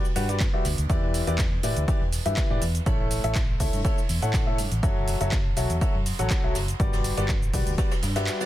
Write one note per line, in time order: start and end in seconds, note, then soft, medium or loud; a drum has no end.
0.04 ride soft
0.04 shaker soft
0.16 0.47 G2 medium
0.16 0.27 G3 loud
0.16 0.27 F#4 medium
0.16 0.27 G4 medium
0.16 0.27 B4 medium
0.16 0.27 F#5 loud
0.16 open hi-hat loud
0.16 ride medium
0.16 shaker medium
0.29 0.39 G3 medium
0.29 0.39 F#4 medium
0.29 0.39 G4 medium
0.29 0.39 B4 medium
0.29 0.39 D5 medium
0.29 closed hi-hat medium
0.29 shaker soft
0.40 kick loud
0.40 snare loud
0.40 clap loud
0.40 closed hi-hat soft
0.40 ride medium
0.40 shaker soft
0.54 0.64 G3 medium
0.54 0.64 F#4 medium
0.54 0.64 G4 medium
0.54 0.64 B4 medium
0.54 0.64 E5 medium
0.65 0.74 D2 loud
0.65 open hi-hat loud
0.65 ride medium
0.65 shaker medium
0.78 0.86 D2 loud
0.78 closed hi-hat medium
0.78 shaker soft
0.90 1.24 E3 medium
0.90 1.24 E4 medium
0.90 1.24 G4 medium
0.90 1.24 B4 medium
0.90 1.24 D5 loud
0.90 kick loud
0.90 closed hi-hat medium
0.90 ride medium
0.90 shaker soft
1.03 ride soft
1.14 open hi-hat loud
1.14 ride medium
1.14 shaker medium
1.27 1.57 E2 loud
1.27 1.38 E3 loud
1.27 1.38 E4 medium
1.27 1.38 G4 medium
1.27 1.38 B4 medium
1.27 1.38 D5 loud
1.27 closed hi-hat medium
1.27 shaker soft
1.38 kick loud
1.38 snare loud
1.38 clap loud
1.38 closed hi-hat medium
1.38 ride medium
1.38 shaker soft
1.63 1.72 A2 medium
1.63 1.82 E3 medium
1.63 1.82 E4 medium
1.63 1.82 G4 medium
1.63 1.82 B4 medium
1.63 1.82 D5 medium
1.63 open hi-hat loud
1.63 ride medium
1.63 shaker medium
1.76 1.84 D2 medium
1.76 closed hi-hat medium
1.76 shaker soft
1.88 2.00 E3 medium
1.88 2.00 E4 medium
1.88 2.00 G4 medium
1.88 2.00 B4 medium
1.88 2.00 D5 loud
1.88 kick loud
1.88 closed hi-hat medium
1.88 ride medium
1.88 shaker soft
2.01 2.17 E1 loud
2.01 ride soft
2.13 open hi-hat loud
2.13 ride medium
2.13 shaker medium
2.26 2.33 G2 medium
2.26 2.47 E3 medium
2.26 2.47 E4 medium
2.26 2.47 G4 medium
2.26 2.47 B4 medium
2.26 2.47 E5 loud
2.26 closed hi-hat medium
2.26 shaker soft
2.37 kick loud
2.37 snare loud
2.37 clap loud
2.37 closed hi-hat medium
2.37 ride medium
2.37 shaker soft
2.50 2.58 A2 loud
2.50 2.61 E3 medium
2.50 2.61 E4 medium
2.50 2.61 G4 medium
2.50 2.61 B4 medium
2.50 2.61 D5 loud
2.61 2.79 E2 medium
2.61 open hi-hat loud
2.61 ride medium
2.61 shaker medium
2.75 closed hi-hat medium
2.75 shaker soft
2.86 3.17 A1 medium
2.86 3.21 A3 medium
2.86 3.21 E4 medium
2.86 3.21 A4 medium
2.86 3.21 C#5 medium
2.86 3.21 E5 loud
2.86 kick loud
2.86 closed hi-hat medium
2.86 ride medium
2.86 shaker soft
3.11 open hi-hat loud
3.11 ride medium
3.11 shaker medium
3.24 3.54 A1 loud
3.24 3.35 A3 loud
3.24 3.35 E4 medium
3.24 3.35 A4 medium
3.24 3.35 C#5 medium
3.24 3.35 E5 loud
3.24 closed hi-hat medium
3.24 shaker soft
3.35 kick loud
3.35 snare loud
3.35 clap loud
3.35 closed hi-hat medium
3.35 ride medium
3.35 shaker soft
3.60 3.69 C#2 medium
3.60 3.79 A3 medium
3.60 3.79 E4 medium
3.60 3.79 A4 medium
3.60 3.79 C#5 medium
3.60 3.79 E5 medium
3.60 kick medium
3.60 open hi-hat medium
3.60 open hi-hat loud
3.60 shaker medium
3.73 3.81 G2 medium
3.73 closed hi-hat medium
3.73 ride soft
3.73 shaker soft
3.85 3.97 A3 medium
3.85 3.97 E4 medium
3.85 3.97 A4 medium
3.85 3.97 C#5 medium
3.85 3.97 E5 medium
3.85 kick loud
3.85 closed hi-hat medium
3.85 ride loud
3.85 shaker soft
3.98 ride medium
3.98 shaker soft
4.09 4.18 E2 loud
4.09 open hi-hat loud
4.09 ride medium
4.09 shaker medium
4.22 4.58 A2 medium
4.22 4.44 A3 medium
4.22 4.44 E4 medium
4.22 4.44 A4 medium
4.22 4.44 C#5 medium
4.22 4.44 F#5 loud
4.22 closed hi-hat medium
4.22 shaker soft
4.33 kick loud
4.33 snare loud
4.33 clap loud
4.33 closed hi-hat medium
4.33 ride medium
4.33 shaker soft
4.47 4.57 A3 medium
4.47 4.57 E4 medium
4.47 4.57 A4 medium
4.47 4.57 C#5 medium
4.47 4.57 E5 medium
4.58 4.67 G2 loud
4.58 open hi-hat loud
4.58 ride medium
4.58 shaker medium
4.72 4.79 A1 medium
4.72 closed hi-hat medium
4.72 shaker soft
4.83 5.14 F#1 loud
4.83 5.18 F#3 medium
4.83 5.18 F#4 medium
4.83 5.18 A4 medium
4.83 5.18 C#5 medium
4.83 5.18 E5 loud
4.83 kick loud
4.83 closed hi-hat medium
4.83 ride medium
4.83 shaker medium
4.96 ride soft
5.08 open hi-hat loud
5.08 ride medium
5.08 shaker medium
5.21 5.51 F#1 loud
5.21 5.31 F#3 loud
5.21 5.31 F#4 medium
5.21 5.31 A4 medium
5.21 5.31 C#5 medium
5.21 5.31 E5 loud
5.21 closed hi-hat medium
5.21 shaker soft
5.31 kick loud
5.31 snare loud
5.31 clap loud
5.31 closed hi-hat medium
5.31 ride medium
5.31 shaker soft
5.57 5.66 B1 medium
5.57 5.75 F#3 medium
5.57 5.75 F#4 medium
5.57 5.75 A4 medium
5.57 5.75 C#5 medium
5.57 5.75 E5 medium
5.57 open hi-hat loud
5.57 ride medium
5.57 shaker medium
5.70 5.78 E2 medium
5.70 closed hi-hat medium
5.70 shaker soft
5.81 5.93 F#3 medium
5.81 5.93 F#4 medium
5.81 5.93 A4 medium
5.81 5.93 C#5 medium
5.81 5.93 E5 medium
5.81 kick loud
5.81 closed hi-hat medium
5.81 ride medium
5.81 shaker soft
5.95 6.11 F#2 loud
5.95 ride soft
6.06 open hi-hat loud
6.06 ride medium
6.06 shaker medium
6.19 6.27 A1 loud
6.19 6.41 F#3 medium
6.19 6.41 F#4 medium
6.19 6.41 A4 medium
6.19 6.41 C#5 medium
6.19 6.41 F#5 loud
6.19 closed hi-hat medium
6.19 shaker soft
6.30 kick loud
6.30 snare loud
6.30 clap loud
6.30 closed hi-hat medium
6.30 ride medium
6.30 shaker soft
6.44 6.51 B1 medium
6.44 6.54 F#3 medium
6.44 6.54 F#4 medium
6.44 6.54 A4 medium
6.44 6.54 C#5 medium
6.44 6.54 E5 medium
6.55 6.72 F#1 medium
6.55 snare loud
6.55 open hi-hat loud
6.55 ride medium
6.55 shaker medium
6.68 closed hi-hat medium
6.68 shaker soft
6.80 7.11 G1 medium
6.80 7.14 G3 medium
6.80 7.14 F#4 medium
6.80 7.14 G4 medium
6.80 7.14 B4 medium
6.80 7.14 D5 loud
6.80 kick loud
6.80 closed hi-hat medium
6.80 shaker soft
6.93 snare loud
6.93 ride medium
6.93 shaker soft
7.04 open hi-hat loud
7.04 shaker medium
7.17 7.48 G1 loud
7.17 7.28 G3 loud
7.17 7.28 F#4 medium
7.17 7.28 G4 medium
7.17 7.28 B4 medium
7.17 7.28 D5 loud
7.17 closed hi-hat medium
7.17 ride medium
7.17 shaker soft
7.28 kick loud
7.28 clap loud
7.28 closed hi-hat medium
7.28 shaker soft
7.43 shaker soft
7.54 7.62 B1 medium
7.54 7.72 G3 medium
7.54 7.72 F#4 medium
7.54 7.72 G4 medium
7.54 7.72 B4 medium
7.54 7.72 D5 medium
7.54 kick medium
7.54 open hi-hat loud
7.54 open hi-hat medium
7.54 shaker medium
7.67 7.74 D2 medium
7.67 closed hi-hat medium
7.67 ride soft
7.67 shaker soft
7.78 7.90 G3 medium
7.78 7.90 F#4 medium
7.78 7.90 G4 medium
7.78 7.90 B4 medium
7.78 7.90 D5 loud
7.78 kick loud
7.78 snare loud
7.78 closed hi-hat medium
7.78 ride medium
7.78 shaker soft
7.91 snare loud
7.91 ride medium
7.91 shaker soft
8.02 8.27 G2 loud
8.02 snare loud
8.02 open hi-hat loud
8.02 ride medium
8.02 shaker medium
8.16 8.37 G3 medium
8.16 8.37 F#4 medium
8.16 8.37 G4 medium
8.16 8.37 B4 medium
8.16 8.37 E5 loud
8.16 snare loud
8.16 closed hi-hat medium
8.16 ride medium
8.16 shaker soft
8.27 snare loud
8.27 clap loud
8.27 closed hi-hat medium
8.27 ride medium
8.27 shaker soft
8.41 8.46 G3 medium
8.41 8.46 F#4 medium
8.41 8.46 G4 medium
8.41 8.46 B4 medium
8.41 8.46 D5 medium
8.41 snare loud
8.41 ride medium
8.41 shaker soft